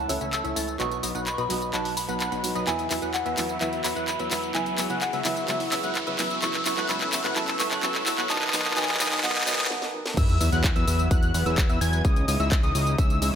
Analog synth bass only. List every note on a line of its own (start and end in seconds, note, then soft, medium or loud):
0.09 0.19 C#2 medium
0.21 0.42 C#2 medium
0.45 0.54 C#2 loud
0.56 0.77 C#2 medium
0.80 1.01 B1 medium
1.03 1.12 B1 medium
1.15 1.36 B1 medium
1.38 1.48 B1 loud
1.50 1.71 B1 medium
1.73 2.06 B1 medium
2.09 2.30 B1 medium
2.32 2.53 B1 loud
2.55 2.65 B1 medium
2.67 2.88 E2 loud
2.91 3.00 E2 medium
3.02 3.23 E2 medium
3.26 3.35 E2 medium
3.37 3.59 E2 medium
3.61 3.82 E2 medium
3.84 3.94 E2 loud
3.96 4.17 E2 medium
4.20 4.29 E2 loud
4.31 4.52 E2 medium
4.55 4.76 C#2 loud
4.78 4.87 C#2 medium
4.90 5.11 C#2 medium
5.13 5.23 C#2 medium
5.25 5.46 C#2 medium
5.49 5.70 C#2 medium
5.72 5.81 C#2 loud
5.84 6.05 C#2 medium
6.07 6.16 C#2 loud
6.19 6.40 C#2 medium
6.42 6.63 C#2 loud
6.66 6.75 C#2 loud
6.77 6.87 C#2 medium
6.89 7.10 C#2 loud
7.12 7.22 C#2 medium
7.24 7.34 C#2 loud
7.36 7.57 C#2 medium
7.59 7.69 C#2 loud
7.71 7.80 C#2 medium
7.83 8.04 C#2 medium
8.06 8.16 B1 medium
8.18 8.27 B1 medium
8.30 8.51 B1 loud
8.53 8.74 B1 loud
8.76 8.98 B1 loud
9.00 9.21 B1 medium
9.23 9.44 B1 medium
9.47 9.68 B1 loud
10.17 10.38 E2 loud
10.41 10.50 E2 loud
10.52 10.73 E2 medium
10.76 10.85 E2 medium
10.88 11.09 E2 medium
11.11 11.32 E2 loud
11.34 11.44 E2 loud
11.46 11.67 E2 medium
11.70 11.79 E2 loud
11.81 12.02 E2 loud
12.05 12.26 C#2 loud
12.28 12.37 C#2 medium
12.40 12.61 C#2 medium
12.63 12.73 C#2 loud
12.75 12.96 C#2 medium
12.98 13.20 C#2 loud
13.22 13.31 C#2 loud